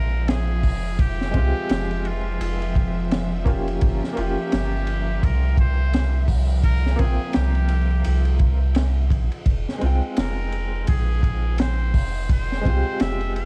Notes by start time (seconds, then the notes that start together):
Already playing: A#1 F3 G#3 C4 F4 A#4 E5 G5
0.28 G#4, snare, ride
0.63 F1, kick, open hi-hat
0.99 G4, kick, ride
1.21 snare
1.31 C2 G#3 C4, kick, ride
1.37 F4 G4
1.69 F1, snare, ride
1.91 ride
2.05 F4, ride
2.40 F1, ride
2.62 ride
2.75 kick, ride
3.11 snare, ride
3.45 A#3 C#4 F4, kick, ride
3.49 G4
3.68 ride
3.81 G1, kick, ride
4.04 snare
4.13 A#3 C#4
4.17 F1 F4 G4, ride
4.21 G4
4.52 G1, snare, ride
4.87 ride
5.23 C2 A#4, kick, ride
5.57 C5, kick, ride
5.93 snare, ride
6.28 C2, kick, open hi-hat
6.63 A#4, kick, ride
6.86 snare
6.96 A#1 A#3 C4 G#4, kick, ride
7.02 F4 G5
7.33 C2 G4, snare, ride
7.55 ride
7.69 ride
8.04 C2, ride
8.25 ride
8.39 kick, ride
8.75 snare, ride
9.10 A#1, kick, ride
9.32 ride
9.46 F1, kick, ride
9.69 snare
9.78 G#3 C4, ride
9.82 C2 F4 G5
10.16 F1 A#4, snare, ride
10.52 ride
10.87 A#1 G#4, kick, ride
11.23 kick, ride
11.58 C5, snare, ride
11.94 F1, kick, open hi-hat
12.29 C5, kick, ride
12.52 snare
12.61 G#3 C4
12.65 C2 F4, kick, ride
12.70 G4
13.00 F1 E5, snare, ride
13.21 ride
13.36 F5, ride